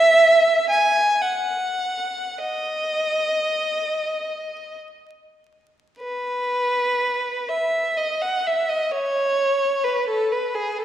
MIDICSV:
0, 0, Header, 1, 2, 480
1, 0, Start_track
1, 0, Key_signature, 4, "major"
1, 0, Tempo, 1038062
1, 565, Tempo, 1160542
1, 1045, Time_signature, 3, 2, 24, 8
1, 1045, Tempo, 1232033
1, 1525, Tempo, 1188119
1, 2485, Tempo, 995025
1, 3445, Tempo, 934579
1, 4918, End_track
2, 0, Start_track
2, 0, Title_t, "Violin"
2, 0, Program_c, 0, 40
2, 0, Note_on_c, 0, 76, 103
2, 321, Note_on_c, 0, 80, 83
2, 324, Note_off_c, 0, 76, 0
2, 562, Note_off_c, 0, 80, 0
2, 562, Note_on_c, 0, 78, 67
2, 1043, Note_off_c, 0, 78, 0
2, 1047, Note_on_c, 0, 75, 78
2, 1998, Note_off_c, 0, 75, 0
2, 2486, Note_on_c, 0, 71, 76
2, 3196, Note_off_c, 0, 71, 0
2, 3210, Note_on_c, 0, 76, 70
2, 3440, Note_on_c, 0, 75, 65
2, 3443, Note_off_c, 0, 76, 0
2, 3563, Note_off_c, 0, 75, 0
2, 3567, Note_on_c, 0, 78, 69
2, 3687, Note_off_c, 0, 78, 0
2, 3694, Note_on_c, 0, 76, 68
2, 3811, Note_off_c, 0, 76, 0
2, 3811, Note_on_c, 0, 75, 73
2, 3922, Note_on_c, 0, 73, 81
2, 3929, Note_off_c, 0, 75, 0
2, 4401, Note_on_c, 0, 71, 68
2, 4407, Note_off_c, 0, 73, 0
2, 4523, Note_on_c, 0, 69, 69
2, 4524, Note_off_c, 0, 71, 0
2, 4641, Note_off_c, 0, 69, 0
2, 4647, Note_on_c, 0, 71, 63
2, 4761, Note_on_c, 0, 68, 70
2, 4764, Note_off_c, 0, 71, 0
2, 4883, Note_off_c, 0, 68, 0
2, 4886, Note_on_c, 0, 69, 80
2, 4918, Note_off_c, 0, 69, 0
2, 4918, End_track
0, 0, End_of_file